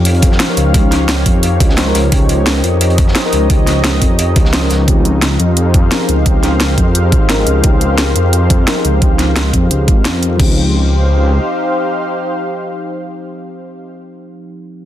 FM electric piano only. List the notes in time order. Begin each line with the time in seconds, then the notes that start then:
Already playing: F3 C#4 D#4 G4
0.39 F3 C#4 D#4 C5
0.48 F3 C#4 D#4 A#4
0.73 F3 C#4 D#4 G4
1.77 F3 C#4 D#4 C5
1.86 F3 C#4 D#4 A#4
2.10 F3 C#4 D#4 G4
3.15 F3 C#4 D#4 C5
3.24 F3 C#4 D#4 A#4
3.48 F3 C#4 D#4 G4
4.52 F3 C#4 D#4 C5
4.61 F3 C#4 D#4 A#4
4.86 F3 C4 D#4 G4
5.91 F3 C4 D#4 A#4
5.99 F3 C4 D#4 G#4
6.24 F3 C4 D#4 G4
7.28 F3 C4 D#4 A#4
7.37 F3 C4 D#4 G#4
7.62 F3 C4 D#4 G4
8.67 F3 C4 D#4 A#4
8.76 F3 C4 D#4 G#4
9.00 F3 C4 D#4 G4
10.37 F3 C4 D#4
10.42 G4